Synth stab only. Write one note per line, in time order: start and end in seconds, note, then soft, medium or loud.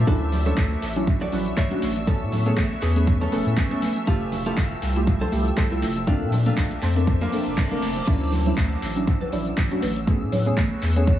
0.07 0.43 F#3 medium
0.07 0.43 C#4 medium
0.07 0.43 D4 medium
0.07 0.43 E4 loud
0.46 0.60 F#3 medium
0.46 0.60 C#4 medium
0.46 0.61 D4 medium
0.46 0.61 E4 medium
0.96 1.29 F#3 medium
0.96 1.30 C#4 medium
0.96 1.30 D4 medium
0.96 1.30 E4 medium
1.32 1.68 F#3 medium
1.32 1.68 C#4 medium
1.32 1.68 D4 medium
1.32 1.68 E4 loud
1.71 1.81 F#3 medium
1.71 1.81 C#4 medium
1.71 1.81 D4 medium
1.71 1.81 F#4 loud
2.07 2.43 A3 medium
2.07 2.43 B3 medium
2.07 2.43 C#4 medium
2.07 2.43 A4 loud
2.46 2.60 A3 medium
2.46 2.60 B3 medium
2.46 2.61 C#4 medium
2.46 2.61 G#4 medium
2.96 3.29 A3 medium
2.96 3.30 B3 medium
2.96 3.30 C#4 medium
2.96 3.30 G#4 medium
3.32 3.68 A3 medium
3.32 3.68 B3 medium
3.32 3.68 C#4 medium
3.32 3.68 A4 loud
3.71 3.81 A3 medium
3.71 3.81 B3 medium
3.71 3.81 C#4 medium
3.71 3.81 A4 loud
4.07 4.43 A3 medium
4.07 4.43 F4 medium
4.07 4.43 G4 loud
4.07 4.43 E5 medium
4.46 4.60 A3 medium
4.46 4.60 E4 medium
4.46 4.61 F4 medium
4.46 4.61 G4 medium
4.96 5.29 A3 medium
4.96 5.30 E4 medium
4.96 5.30 F4 medium
4.96 5.30 G4 medium
5.32 5.68 A3 loud
5.32 5.68 E4 medium
5.32 5.68 F4 medium
5.32 5.68 G4 loud
5.71 5.85 A3 loud
5.71 5.85 E4 medium
5.71 5.86 F4 medium
5.71 5.86 A4 loud
6.07 6.43 A#3 medium
6.07 6.43 C4 medium
6.07 6.43 D4 medium
6.07 6.43 A4 loud
6.46 6.60 A#3 medium
6.46 6.60 C4 medium
6.46 6.61 D4 medium
6.46 6.61 A4 medium
6.96 7.29 A#3 medium
6.96 7.30 C4 medium
6.96 7.30 D4 medium
6.96 7.30 A4 medium
7.32 7.68 A#3 medium
7.32 7.68 C4 medium
7.32 7.68 D4 medium
7.32 7.68 A4 loud
7.71 7.85 A#3 loud
7.71 7.85 C4 medium
7.71 7.86 D4 medium
7.71 7.86 A#4 loud
8.07 8.43 F#3 medium
8.07 8.43 C#4 medium
8.07 8.43 D4 medium
8.07 8.43 E4 loud
8.46 8.60 F#3 medium
8.46 8.60 C#4 medium
8.46 8.61 D4 medium
8.46 8.61 E4 medium
8.96 9.29 F#3 medium
8.96 9.30 C#4 medium
8.96 9.30 D4 medium
8.96 9.30 E4 medium
9.32 9.68 F#3 medium
9.32 9.68 C#4 medium
9.32 9.68 D4 medium
9.32 9.68 E4 loud
9.71 9.81 F#3 loud
9.71 9.81 C#4 medium
9.71 9.81 D4 medium
9.71 9.81 F#4 loud
10.07 10.43 A3 loud
10.07 10.43 B3 medium
10.07 10.43 C#4 medium
10.07 10.43 G#4 loud
10.46 10.60 A3 medium
10.46 10.60 B3 medium
10.46 10.61 C#4 medium
10.46 10.61 G#4 medium
10.96 11.19 A3 medium
10.96 11.19 B3 medium
10.96 11.19 C#4 medium
10.96 11.19 G#4 medium